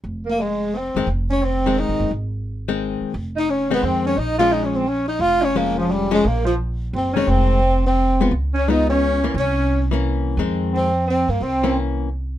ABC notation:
X:1
M:3/4
L:1/8
Q:"Swing" 1/4=174
K:Fm
V:1 name="Alto saxophone"
z B, A,2 C2 | z D C2 E2 | z6 | z E D =B, C D |
E F (3E D C D E | F D B, F, G, A, | B, F, z2 C D | C3 C3 |
z D E D3 | D3 z3 | z2 C2 C B, | C2 z4 |]
V:2 name="Tenor saxophone"
z B, A,2 C2 | z D C2 E2 | z6 | z E D =B, C D |
E F (3E D C D E | F D B, F, G, A, | B, F, z2 C D | C3 C3 |
z D E D3 | D3 z3 | z2 C2 C B, | C2 z4 |]
V:3 name="Hollow-body jazz guitar" clef=bass
z4 z [E,A,C] | z3 [E,A,C]3 | z3 [E,A,C]3 | z3 [E,A,C]3 |
z [F,A,D]3 z2 | z2 [F,A,D]3 [F,A,D] | z4 z [E,A,C]- | [E,A,C]2 z3 [A,=B,F] |
z2 [A,_CF]3 [=E,B,D] | z3 [=E,B,D]3 | [E,A,C]3 z3 | z [=E,B,D]3 z2 |]
V:4 name="Upright bass" clef=bass
F,,,4- F,,, _G,,, | F,,,4- (3F,,, A,,, _G,,, | A,,,4- A,,, z | F,,,4 F,,2 |
B,,,6 | F,,,6 | B,,,4 _G,,,2 | F,,,6 |
D,,6 | C,,6 | F,,4- F,, G,, | C,,6 |]